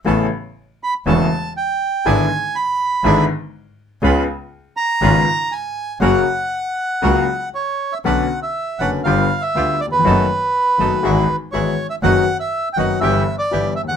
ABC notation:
X:1
M:4/4
L:1/16
Q:1/4=121
K:Bm
V:1 name="Bandoneon"
z6 b2 a4 g4 | ^g4 b6 z6 | z6 ^a6 ^g4 | f12 c3 e |
f3 e3 f2 =f3 e3 d B- | B8- B3 z c3 e | f3 e2- e/2 g/2 f2 e3 d3 e f |]
V:2 name="Bandoneon"
[B,CA]2 z6 [B,CA]2 z6 | [DE^G]2 z6 [DEG]2 z6 | [C^EB]2 z6 [CEB]2 z6 | [CF^A]2 z6 [CFA]2 z6 |
[CDB]2 z4 [CDB]2 [B,=FG]2 z2 [B,FG]2 z2 | [B,^DA]2 z4 [B,DA]2 [^G,EF]2 z2 [G,EF]2 z2 | [B,^DF]2 z4 [B,DF]2 [B,EG]2 z2 [B,EG]2 z2 |]
V:3 name="Grand piano" clef=bass
[A,,,A,,C,A,B,E]2 z6 [E,,,E,,C,A,B,E]2 z6 | [^G,,,^G,,D,^G,B,E]2 z6 [G,,,G,,D,G,B,E]2 z6 | [C,,C,^G,B,^E]2 z6 [^G,,,^G,,C,G,B,E]2 z6 | [F,,C,F,^A,F]2 z6 [C,,C,F,A,F]2 z6 |
[B,,,B,,D,B,CF]2 z4 [F,,,F,,D,B,CF]2 [G,,,G,,D,G,B,=F]2 z2 [D,,D,G,B,F]2 z/2 ^D,,/2 E,,/2 =F,,/2 | [F,,^D,F,A,B,F]2 z4 [F,,D,F,A,B,F]2 [^G,,,^G,,E,^G,B,F]2 z2 [G,,,G,,E,G,B,F]2 z2 | [F,,^D,F,B,F]2 z4 [F,,D,F,B,F]2 [G,,,G,,E,G,B,G]2 z2 [G,,,G,,E,G,B,G]2 z/2 ^D,,/2 E,,/2 z/2 |]
V:4 name="Double bass" clef=bass
A,,,2 z6 E,,,2 z6 | ^G,,,2 z6 G,,,2 z6 | C,,2 z6 ^G,,,2 z6 | F,,,2 z6 C,,2 z6 |
B,,,2 z4 F,,,2 G,,,2 z2 D,,2 z2 | F,,,2 z4 F,,,2 ^G,,,2 z2 G,,,2 z2 | F,,,2 z4 F,,,2 G,,,2 z2 G,,,2 z2 |]